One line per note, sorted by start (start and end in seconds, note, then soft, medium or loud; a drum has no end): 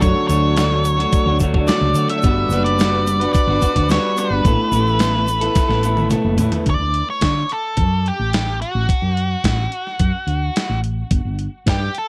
0.00 0.13 F#2 loud
0.00 0.55 D3 loud
0.00 0.57 F#3 loud
0.00 0.28 A3 medium
0.00 4.41 D4 medium
0.00 0.30 D4 loud
0.00 0.30 F#4 loud
0.00 2.20 A4 medium
0.00 0.27 C#5 loud
0.00 2.18 F#5 medium
0.00 2.20 C#6 medium
0.00 kick loud
0.00 closed hi-hat medium
0.00 shaker medium
0.04 0.30 C#5 loud
0.28 1.05 D2 loud
0.28 0.56 A3 medium
0.28 0.57 D4 medium
0.28 0.58 F#4 medium
0.28 1.35 C#5 medium
0.28 0.58 C#5 medium
0.28 closed hi-hat medium
0.28 shaker loud
0.56 0.98 D3 loud
0.56 1.68 F#3 loud
0.56 0.72 A3 loud
0.56 0.72 D4 loud
0.56 0.71 F#4 loud
0.56 0.69 C#5 medium
0.56 snare loud
0.56 closed hi-hat medium
0.56 shaker medium
0.70 0.83 A3 medium
0.70 0.85 D4 medium
0.70 0.85 F#4 medium
0.70 0.84 C#5 medium
0.85 muted clean electric guitar stroke soft
0.85 closed hi-hat medium
0.85 shaker loud
0.97 1.28 A3 medium
0.97 1.27 D4 medium
0.97 1.26 F#4 medium
0.97 1.25 C#5 medium
0.97 closed hi-hat medium
1.12 kick loud
1.12 closed hi-hat medium
1.12 shaker medium
1.26 1.69 D2 medium
1.26 1.38 A3 medium
1.26 1.40 D4 medium
1.26 1.41 F#4 medium
1.26 1.42 C#5 medium
1.39 1.56 A3 medium
1.39 1.55 D4 medium
1.39 1.54 F#4 medium
1.39 1.53 C#5 medium
1.39 kick medium
1.39 closed hi-hat medium
1.39 shaker loud
1.54 1.68 A3 medium
1.54 1.69 D4 medium
1.54 1.69 F#4 medium
1.54 1.70 C#5 medium
1.54 kick medium
1.67 2.21 D3 loud
1.67 2.22 F#3 loud
1.67 1.94 A3 loud
1.67 1.96 D4 loud
1.67 1.96 F#4 loud
1.67 1.98 C#5 loud
1.67 2.10 D5 loud
1.67 snare loud
1.67 closed hi-hat medium
1.67 shaker medium
1.81 1.92 C#2 medium
1.94 2.05 D3 medium
1.94 2.12 A3 medium
1.94 2.11 D4 medium
1.94 2.10 F#4 medium
1.94 closed hi-hat medium
1.94 shaker loud
1.99 2.09 C#5 medium
2.09 2.23 A3 medium
2.09 2.23 D4 medium
2.09 2.22 F#4 medium
2.09 2.22 C#5 medium
2.09 2.64 E5 loud
2.09 closed hi-hat medium
2.22 2.45 G1 medium
2.22 2.77 G3 loud
2.22 2.50 B3 loud
2.22 2.51 D4 loud
2.22 2.52 F#4 loud
2.22 4.43 F#5 medium
2.22 4.43 B5 medium
2.22 kick loud
2.22 closed hi-hat medium
2.22 shaker medium
2.27 2.53 B4 loud
2.49 3.25 F#1 medium
2.49 2.79 B3 medium
2.49 2.79 D4 medium
2.49 2.80 F#4 medium
2.49 closed hi-hat medium
2.49 shaker loud
2.54 2.81 B4 medium
2.64 3.32 D5 loud
2.64 closed hi-hat medium
2.78 3.20 G3 medium
2.78 3.07 B3 loud
2.78 2.94 D4 loud
2.78 2.92 F#4 loud
2.78 2.91 B4 loud
2.78 snare loud
2.78 closed hi-hat medium
2.78 shaker medium
2.92 3.06 D4 medium
2.92 3.07 F#4 medium
2.92 3.07 B4 medium
3.07 muted clean electric guitar stroke soft
3.07 closed hi-hat medium
3.07 shaker loud
3.20 3.50 D4 medium
3.20 3.48 F#4 medium
3.20 3.46 B4 medium
3.20 closed hi-hat medium
3.33 3.90 D5 loud
3.33 kick loud
3.33 closed hi-hat medium
3.33 shaker medium
3.47 3.58 G1 loud
3.47 3.60 D4 medium
3.47 3.61 F#4 medium
3.47 3.63 B4 medium
3.60 3.88 B3 medium
3.60 3.76 D4 medium
3.60 3.75 F#4 medium
3.60 3.73 B4 medium
3.60 kick medium
3.60 closed hi-hat medium
3.60 shaker medium
3.74 3.97 D2 medium
3.74 3.89 D4 medium
3.74 3.90 F#4 medium
3.74 3.90 B4 medium
3.74 kick medium
3.74 closed hi-hat medium
3.88 4.43 G3 medium
3.88 4.16 B3 medium
3.88 4.17 D4 medium
3.88 4.18 F#4 loud
3.88 4.19 B4 loud
3.88 4.19 C#5 medium
3.88 snare loud
3.88 closed hi-hat medium
3.88 shaker medium
4.17 4.43 B3 medium
4.17 4.31 D4 medium
4.17 4.30 F#4 medium
4.17 6.08 B4 medium
4.17 4.29 B4 medium
4.17 closed hi-hat medium
4.17 shaker loud
4.30 4.41 G1 medium
4.30 4.44 D4 medium
4.30 4.43 F#4 medium
4.30 4.42 B4 medium
4.43 4.55 A1 loud
4.43 4.71 A3 loud
4.43 4.72 B3 loud
4.43 4.73 E4 loud
4.43 6.64 A4 medium
4.43 6.64 B4 medium
4.43 6.64 E5 medium
4.43 6.64 B5 medium
4.43 kick loud
4.43 closed hi-hat medium
4.43 shaker medium
4.47 4.74 A4 loud
4.72 5.48 A1 loud
4.72 4.98 A3 medium
4.72 4.99 B3 medium
4.72 5.01 E4 medium
4.72 closed hi-hat medium
4.72 shaker loud
4.76 5.01 A4 medium
4.87 shaker soft
4.99 5.27 A3 medium
4.99 5.15 B3 loud
4.99 5.14 E4 loud
4.99 5.12 A4 loud
4.99 snare loud
4.99 closed hi-hat medium
4.99 shaker medium
5.13 5.27 B3 medium
5.13 5.27 E4 medium
5.13 5.28 A4 medium
5.28 muted clean electric guitar stroke soft
5.28 closed hi-hat medium
5.28 shaker loud
5.41 5.70 B3 medium
5.41 5.69 E4 medium
5.41 5.67 A4 medium
5.41 closed hi-hat medium
5.55 kick loud
5.55 snare medium
5.55 closed hi-hat medium
5.55 shaker medium
5.68 6.13 A1 medium
5.68 5.83 B3 medium
5.68 5.84 E4 medium
5.68 5.85 A4 medium
5.68 snare medium
5.83 6.08 A3 medium
5.83 5.98 B3 medium
5.83 5.97 E4 medium
5.83 5.95 A4 medium
5.83 closed hi-hat medium
5.83 shaker loud
5.96 6.10 B3 medium
5.96 6.10 E4 medium
5.96 6.11 A4 medium
5.96 high tom medium
5.96 shaker soft
6.09 6.36 A3 medium
6.09 6.37 B3 medium
6.09 6.39 E4 medium
6.09 6.39 A4 loud
6.09 closed hi-hat medium
6.09 mid tom medium
6.09 shaker medium
6.25 6.35 F#1 medium
6.37 6.48 A2 medium
6.37 6.64 A3 medium
6.37 6.54 B3 medium
6.37 6.53 E4 medium
6.37 6.51 A4 medium
6.37 closed hi-hat medium
6.37 floor tom loud
6.37 shaker loud
6.52 6.66 B3 medium
6.52 6.65 E4 medium
6.52 6.64 A4 medium
6.52 closed hi-hat medium
6.52 floor tom medium
6.66 6.77 D2 loud
6.66 7.10 D5 loud
6.66 kick loud
6.66 closed hi-hat medium
6.80 7.02 D2 medium
6.94 closed hi-hat medium
7.10 7.52 C#5 medium
7.21 7.43 D3 medium
7.21 kick medium
7.21 snare loud
7.21 closed hi-hat medium
7.49 8.08 A4 medium
7.49 closed hi-hat medium
7.77 8.10 F#2 medium
7.77 kick loud
7.77 closed hi-hat medium
8.06 8.61 G4 medium
8.06 closed hi-hat medium
8.19 8.63 A1 medium
8.33 snare loud
8.33 closed hi-hat medium
8.62 10.80 F#4 medium
8.62 closed hi-hat medium
8.75 8.86 A1 medium
8.89 kick loud
8.89 closed hi-hat medium
9.02 9.35 F#2 medium
9.17 closed hi-hat medium
9.44 9.66 A1 loud
9.44 kick medium
9.44 snare loud
9.44 closed hi-hat medium
9.72 closed hi-hat medium
9.87 snare soft
9.99 10.11 F#2 medium
9.99 kick loud
9.99 closed hi-hat medium
10.27 10.49 D2 medium
10.27 closed hi-hat medium
10.56 snare loud
10.56 closed hi-hat medium
10.70 11.02 A1 medium
10.84 closed hi-hat medium
11.11 11.22 G1 loud
11.11 kick loud
11.11 closed hi-hat medium
11.25 11.47 G1 medium
11.39 closed hi-hat medium
11.66 11.88 G2 medium
11.66 11.97 G4 medium
11.66 kick medium
11.66 snare loud
11.66 closed hi-hat medium
11.95 12.08 A4 medium
11.95 closed hi-hat medium